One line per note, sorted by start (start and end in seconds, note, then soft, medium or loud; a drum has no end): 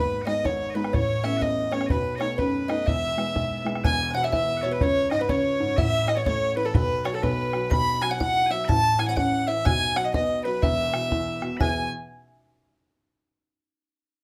0.00 0.41 G#1 medium
0.00 0.43 D#2 medium
0.00 0.17 G#3 soft
0.00 0.17 B3 soft
0.00 0.17 D#4 medium
0.00 0.22 B4 medium
0.00 0.24 B4 medium
0.00 0.25 B4 loud
0.22 0.45 D#5 medium
0.22 0.26 F#5 medium
0.27 0.65 G#3 soft
0.27 0.66 B3 soft
0.27 0.66 D#4 medium
0.27 0.44 D#5 medium
0.27 0.47 D#5 loud
0.27 bodhran medium
0.44 0.90 G#1 medium
0.44 0.92 G#2 medium
0.44 0.70 C#5 medium
0.44 0.76 C#5 medium
0.44 0.77 C#5 loud
0.44 bodhran medium
0.70 0.74 D#5 medium
0.74 0.90 G#3 soft
0.74 0.90 B3 soft
0.74 0.90 D#4 medium
0.74 0.94 B4 medium
0.74 0.96 B4 medium
0.84 bodhran medium
0.93 1.86 A1 medium
0.93 1.40 A2 medium
0.93 1.21 C#5 medium
0.93 1.38 C#5 medium
0.93 1.25 C#5 loud
0.93 bodhran medium
1.24 1.63 A3 soft
1.24 1.63 B3 soft
1.24 1.63 C#4 soft
1.24 1.42 E5 medium
1.24 1.44 E5 loud
1.24 bodhran medium
1.38 1.73 D#5 medium
1.38 1.42 F#5 medium
1.42 1.89 E2 medium
1.42 1.73 D#5 medium
1.42 1.74 D#5 loud
1.42 bodhran medium
1.72 1.87 A3 medium
1.72 1.87 B3 soft
1.72 1.87 C#4 medium
1.72 1.89 C#5 medium
1.72 1.87 C#5 medium
1.72 bodhran medium
1.81 bodhran medium
1.87 2.83 B1 medium
1.87 2.37 B2 medium
1.87 2.18 B4 loud
1.87 2.22 B4 medium
1.87 1.91 D#5 medium
1.87 bodhran medium
1.91 2.16 B4 medium
2.16 2.20 D#5 medium
2.20 2.59 A3 soft
2.20 2.59 B3 soft
2.20 2.60 D#4 medium
2.20 2.37 C#5 medium
2.20 2.39 C#5 medium
2.20 bodhran medium
2.38 2.86 F#2 medium
2.38 2.67 B4 medium
2.38 2.71 B4 medium
2.38 2.87 B4 medium
2.38 bodhran medium
2.68 2.83 A3 soft
2.68 2.84 B3 soft
2.68 2.84 D#4 medium
2.68 2.86 D#5 medium
2.68 2.89 D#5 medium
2.68 bodhran medium
2.86 3.80 E1 medium
2.86 3.34 E2 medium
2.86 3.61 E5 medium
2.86 3.84 E5 medium
2.86 3.66 E5 loud
2.86 bodhran medium
3.17 3.56 G#3 soft
3.17 3.56 B3 soft
3.17 3.57 E4 medium
3.17 bodhran medium
3.35 3.82 B1 medium
3.35 bodhran medium
3.65 3.80 G#3 medium
3.65 3.80 B3 soft
3.65 3.80 E4 medium
3.65 bodhran medium
3.75 bodhran medium
3.84 4.77 E1 medium
3.84 4.78 E2 medium
3.84 4.14 G#5 medium
3.84 4.09 G#5 medium
3.84 4.13 G#5 loud
3.84 bodhran medium
4.11 4.32 B2 medium
4.11 4.23 F#5 medium
4.11 4.14 G#5 medium
4.15 4.24 F#5 medium
4.15 4.26 F#5 medium
4.23 4.32 E5 medium
4.23 4.31 E5 medium
4.23 4.33 E5 medium
4.32 4.62 E3 medium
4.32 4.57 E5 medium
4.32 4.61 E5 medium
4.32 4.66 E5 medium
4.32 bodhran medium
4.57 4.61 F#5 medium
4.61 4.81 B2 medium
4.61 4.72 C#5 medium
4.61 4.71 C#5 medium
4.61 4.73 C#5 medium
4.72 4.81 B4 medium
4.72 4.84 B4 medium
4.81 5.75 C#2 medium
4.81 5.10 C#5 medium
4.81 5.18 C#5 medium
4.81 5.11 C#5 loud
4.81 bodhran medium
5.10 5.29 G#2 medium
5.10 5.19 D#5 medium
5.10 5.23 D#5 medium
5.10 bodhran medium
5.19 5.29 B4 medium
5.19 5.31 B4 medium
5.29 5.59 C#3 medium
5.29 5.77 C#5 medium
5.29 5.74 C#5 medium
5.29 5.80 C#5 loud
5.29 bodhran medium
5.60 5.77 G#2 medium
5.77 6.71 A1 medium
5.77 6.72 A2 medium
5.77 6.07 E5 medium
5.77 6.09 E5 medium
5.77 6.10 E5 loud
5.77 bodhran medium
6.07 6.26 E3 medium
6.07 6.17 D#5 medium
6.07 6.16 D#5 medium
6.07 6.19 D#5 medium
6.07 bodhran medium
6.16 6.26 C#5 medium
6.16 6.25 C#5 medium
6.16 6.26 C#5 medium
6.26 6.56 A3 medium
6.26 6.56 C#5 medium
6.26 6.55 C#5 medium
6.26 6.55 C#5 loud
6.26 bodhran medium
6.56 6.74 E3 medium
6.56 6.66 B4 medium
6.56 6.67 B4 medium
6.56 6.65 B4 medium
6.65 6.76 A4 medium
6.65 6.74 A4 medium
6.65 6.75 A4 medium
6.74 7.20 B1 medium
6.74 7.22 B2 medium
6.74 7.06 B4 loud
6.74 7.05 B4 medium
6.74 7.03 B4 medium
6.74 bodhran loud
7.05 7.23 F#3 medium
7.05 7.15 C#5 medium
7.05 7.14 C#5 medium
7.05 bodhran medium
7.14 7.23 A4 medium
7.14 7.25 A4 medium
7.14 7.23 A4 medium
7.23 7.68 B1 medium
7.23 7.70 B2 medium
7.23 7.71 B4 medium
7.23 7.71 B4 loud
7.23 7.68 B4 medium
7.23 bodhran medium
7.53 7.71 F#3 medium
7.53 bodhran medium
7.71 8.65 B1 medium
7.71 8.66 B2 medium
7.71 8.03 B5 medium
7.71 8.02 B5 medium
7.71 8.03 B5 loud
7.71 bodhran medium
8.02 8.20 F#3 medium
8.02 8.11 G#5 loud
8.02 8.10 G#5 medium
8.02 8.12 G#5 loud
8.02 bodhran medium
8.10 8.20 F#5 medium
8.10 8.19 F#5 medium
8.20 8.50 E4 medium
8.20 8.46 F#5 medium
8.20 8.52 F#5 loud
8.20 8.49 F#5 loud
8.20 bodhran medium
8.46 8.51 G#5 medium
8.50 8.68 F#3 medium
8.50 8.65 E5 medium
8.50 8.68 E5 medium
8.50 8.69 E5 loud
8.65 8.99 A5 loud
8.65 8.68 B5 loud
8.69 9.62 A1 medium
8.69 9.63 A2 medium
8.69 9.00 A5 medium
8.69 9.01 A5 loud
8.69 bodhran medium
8.99 9.16 E3 medium
8.99 9.08 G#5 medium
8.99 9.17 G#5 medium
8.99 9.07 G#5 loud
8.99 bodhran medium
9.08 9.17 F#5 loud
9.08 9.16 F#5 medium
9.17 9.47 C#4 medium
9.17 9.47 F#5 medium
9.17 9.45 F#5 medium
9.17 9.49 F#5 loud
9.17 bodhran medium
9.47 9.65 E3 medium
9.47 9.66 E5 medium
9.47 9.67 E5 loud
9.65 10.59 B1 medium
9.65 10.60 B2 medium
9.65 9.97 G#5 medium
9.65 9.98 G#5 loud
9.65 bodhran medium
9.96 10.14 F#3 medium
9.96 10.15 F#5 medium
9.96 10.06 F#5 loud
9.96 10.05 F#5 medium
9.96 bodhran medium
10.05 10.13 D#5 medium
10.05 10.14 D#5 medium
10.14 10.44 B3 medium
10.14 10.44 D#5 medium
10.14 10.43 D#5 medium
10.14 10.46 D#5 medium
10.14 bodhran medium
10.44 10.63 F#3 medium
10.44 10.63 B4 medium
10.44 10.64 B4 loud
10.44 10.64 B4 medium
10.63 11.56 E1 medium
10.63 11.57 E2 medium
10.63 11.57 E5 medium
10.63 11.42 E5 loud
10.63 11.38 E5 medium
10.63 bodhran medium
10.93 11.11 B2 medium
10.93 bodhran medium
11.11 11.41 E3 medium
11.11 bodhran medium
11.42 11.58 B2 medium
11.42 bodhran medium
11.57 11.88 E2 medium
11.57 11.88 B2 medium
11.57 11.89 E3 medium
11.57 11.89 B3 medium
11.57 11.89 G#4 medium
11.57 11.89 G#5 loud
11.57 11.89 G#5 medium
11.57 11.60 B5 medium
11.57 bodhran medium
11.61 11.89 E5 medium